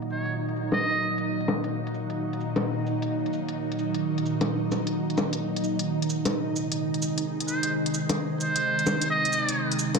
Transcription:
0.00 5.83 A#2 medium
0.00 9.99 D#3 medium
0.00 5.83 F#3 medium
0.00 9.99 D#4 medium
0.00 closed hi-hat soft
0.10 0.35 C#5 medium
0.10 cabasa medium
0.25 closed hi-hat soft
0.49 closed hi-hat soft
0.56 cabasa medium
0.72 1.19 D#5 medium
0.72 closed hi-hat soft
0.72 low bongo medium
1.03 cabasa medium
1.18 closed hi-hat medium
1.41 closed hi-hat soft
1.48 low bongo medium
1.48 cabasa medium
1.64 closed hi-hat medium
1.87 closed hi-hat soft
1.94 cabasa medium
2.10 closed hi-hat soft
2.33 closed hi-hat soft
2.40 cabasa medium
2.56 closed hi-hat soft
2.56 low bongo soft
2.87 cabasa medium
3.02 closed hi-hat soft
3.26 closed hi-hat soft
3.33 cabasa medium
3.49 closed hi-hat medium
3.72 closed hi-hat soft
3.79 cabasa medium
3.94 closed hi-hat soft
4.18 closed hi-hat soft
4.26 cabasa medium
4.41 closed hi-hat soft
4.41 low bongo soft
4.72 low bongo soft
4.72 cabasa medium
4.87 closed hi-hat soft
5.10 closed hi-hat soft
5.18 low bongo medium
5.18 cabasa medium
5.33 closed hi-hat soft
5.56 closed hi-hat soft
5.64 cabasa medium
5.79 closed hi-hat soft
5.88 9.99 C3 medium
5.88 9.99 G#3 medium
6.02 closed hi-hat soft
6.10 cabasa medium
6.25 closed hi-hat soft
6.25 low bongo soft
6.56 cabasa medium
6.72 closed hi-hat soft
6.94 closed hi-hat soft
7.02 cabasa medium
7.18 closed hi-hat soft
7.40 closed hi-hat soft
7.48 7.73 C5 medium
7.48 cabasa medium
7.63 closed hi-hat soft
7.86 closed hi-hat soft
7.94 cabasa medium
8.09 closed hi-hat soft
8.09 low bongo medium
8.41 9.07 C5 medium
8.41 cabasa medium
8.56 closed hi-hat soft
8.79 closed hi-hat soft
8.86 low bongo medium
8.86 cabasa medium
9.01 closed hi-hat soft
9.11 9.77 D#5 medium
9.25 closed hi-hat soft
9.33 cabasa medium
9.49 closed hi-hat soft
9.71 closed hi-hat soft
9.79 cabasa medium
9.95 closed hi-hat soft
9.95 low bongo medium

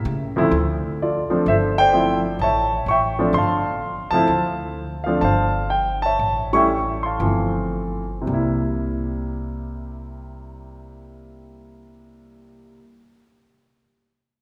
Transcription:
0.05 0.51 C#3 medium
0.36 0.51 D2 medium
0.36 0.51 F3 medium
0.36 0.52 A3 medium
0.36 0.52 C4 medium
0.36 0.52 E4 medium
0.51 1.26 D2 medium
1.02 1.45 F4 medium
1.02 1.45 A4 medium
1.02 1.45 D5 medium
1.30 1.45 F3 medium
1.30 1.45 A3 medium
1.30 1.45 C4 medium
1.30 1.46 D4 medium
1.30 muted upright bass stroke soft
1.46 2.36 G1 medium
1.46 2.38 A4 medium
1.46 1.79 C5 medium
1.46 1.55 E5 medium
1.78 2.38 C5 medium
1.78 2.38 D5 medium
1.78 2.21 G5 loud
1.93 2.21 F3 medium
1.93 2.21 A3 medium
1.93 2.21 C4 medium
1.93 2.21 E4 medium
2.39 2.83 A1 medium
2.39 2.85 A5 medium
2.43 3.32 C#5 medium
2.43 2.89 E5 medium
2.86 3.30 A1 medium
2.86 3.36 C#6 medium
2.91 3.33 E5 medium
2.91 3.33 G5 medium
3.19 3.33 F3 medium
3.19 3.33 A3 medium
3.19 3.33 C4 medium
3.19 3.34 D4 medium
3.33 4.07 G1 medium
3.33 4.14 C6 medium
3.38 4.13 F5 medium
3.38 4.09 A5 medium
4.11 4.27 C#2 medium
4.11 4.27 F3 medium
4.11 4.27 A3 medium
4.11 4.27 C4 medium
4.11 5.03 C5 medium
4.11 5.02 F5 medium
4.11 5.08 A5 loud
4.15 4.28 E4 medium
4.28 5.18 D2 medium
5.04 5.21 F3 medium
5.04 5.21 A3 medium
5.04 5.22 C4 medium
5.04 5.22 D4 medium
5.04 5.20 F5 medium
5.21 6.15 G1 medium
5.21 6.16 C5 medium
5.21 6.17 F5 medium
5.21 5.67 A5 medium
5.70 6.00 G5 medium
6.02 7.00 C#5 medium
6.02 6.55 E5 medium
6.02 6.49 A5 loud
6.19 7.17 A1 medium
6.53 6.68 G3 medium
6.53 6.68 A3 medium
6.53 6.69 C#4 medium
6.53 6.69 E4 medium
6.53 7.19 E5 medium
6.53 7.19 G5 medium
6.53 7.05 C#6 loud
7.03 8.06 F5 medium
7.03 8.06 A5 medium
7.03 7.69 C6 medium
7.20 8.23 G1 medium
7.20 8.03 E3 medium
7.20 8.02 F3 soft
7.20 8.02 A3 soft
7.20 8.02 C4 soft
8.22 12.75 C3 medium
8.26 12.77 C2 medium
8.26 12.79 G3 medium
8.26 12.83 A#3 medium
8.33 12.87 E4 medium

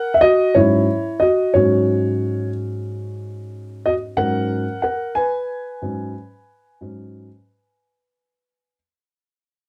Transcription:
0.00 0.13 A#4 medium
0.00 0.17 F#5 medium
0.14 0.21 E5 medium
0.21 0.53 F#4 medium
0.21 0.55 D#5 medium
0.55 0.85 G#2 soft
0.55 0.85 F#3 soft
0.55 0.85 C#4 medium
0.55 1.18 E4 medium
0.55 1.23 C#5 medium
1.20 1.52 F#4 medium
1.20 1.54 D#5 medium
1.54 4.14 G#2 soft
1.54 4.14 F#3 soft
1.54 4.15 C#4 medium
1.54 2.50 F#4 medium
1.54 2.49 C#5 medium
3.86 3.94 F#4 medium
3.86 3.93 D#5 medium
4.17 4.63 G#2 soft
4.17 4.63 F#3 soft
4.17 4.64 C#4 medium
4.17 4.80 A#4 medium
4.17 4.81 F#5 medium
4.82 5.14 A#4 medium
4.82 5.13 F#5 medium
5.15 8.75 B4 medium
5.15 8.74 G#5 medium
5.82 6.12 G#2 soft
5.82 6.12 F#3 soft
5.82 6.12 C#4 medium
6.81 7.27 G#2 soft
6.81 7.27 F#3 soft
6.81 7.27 C#4 medium

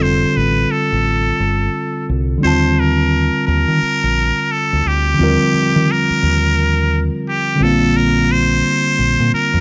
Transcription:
0.00 0.23 F1 medium
0.00 2.36 D3 medium
0.00 2.37 G3 medium
0.00 2.38 C4 medium
0.00 2.39 F4 medium
0.00 2.43 A4 medium
0.00 0.38 C5 medium
0.37 0.64 A1 medium
0.37 0.73 B4 medium
0.71 2.08 A4 medium
0.92 1.30 A1 medium
1.40 1.67 G1 medium
2.09 2.36 C2 medium
2.38 5.12 D3 medium
2.38 5.13 G3 medium
2.42 3.29 D#2 medium
2.42 5.14 C4 medium
2.42 5.15 F4 medium
2.42 2.81 C5 medium
2.47 5.16 A5 medium
2.79 3.46 A#4 medium
3.47 3.64 D#2 medium
3.47 4.53 A#4 medium
3.68 3.78 D#3 medium
3.82 muted fingered electric bass stroke soft
4.03 4.30 A#1 medium
4.51 4.89 A4 medium
4.73 4.82 D2 medium
4.86 5.13 D2 medium
4.86 5.93 G4 medium
5.14 7.53 D3 medium
5.14 5.25 F3 soft
5.19 5.36 D#2 medium
5.19 7.56 C4 medium
5.19 7.57 F4 medium
5.23 7.56 G3 medium
5.23 7.58 A#4 medium
5.54 muted fingered electric bass stroke soft
5.76 5.85 D#3 medium
5.91 7.01 A#4 loud
6.10 muted fingered electric bass stroke soft
6.23 7.08 D#2 medium
7.28 7.64 G4 medium
7.55 9.61 D3 medium
7.55 9.61 G3 medium
7.60 8.61 A#1 medium
7.60 9.61 C4 medium
7.60 9.61 F4 medium
7.60 7.98 A4 medium
7.65 9.61 A#3 medium
7.97 8.33 A#4 loud
8.32 9.33 C5 loud
8.99 9.15 A#1 medium
9.20 9.30 A#2 loud
9.33 9.61 A#4 medium
9.33 muted fingered electric bass stroke soft
9.54 9.61 F2 medium

